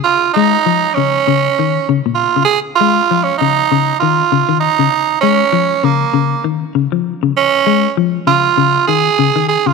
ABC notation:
X:1
M:4/4
L:1/16
Q:"Swing 16ths" 1/4=98
K:Bbm
V:1 name="Tenor saxophone"
F2 E4 D6 z2 F2 | A2 F3 D E4 F4 E2- | E2 D4 B,4 z6 | D4 z2 F4 A4 A F |]
V:2 name="Clean electric guitar" clef=bass
z2 A,2 F,2 D,2 D,2 E,2 D, B,,2 D, | z2 A,2 F,2 D,2 D,2 E,2 D, E,2 D, | z2 A,2 F,2 D,2 D,2 E,2 D, F,2 D, | z2 A,2 F,2 D,2 D,2 E,2 D, E,2 D, |]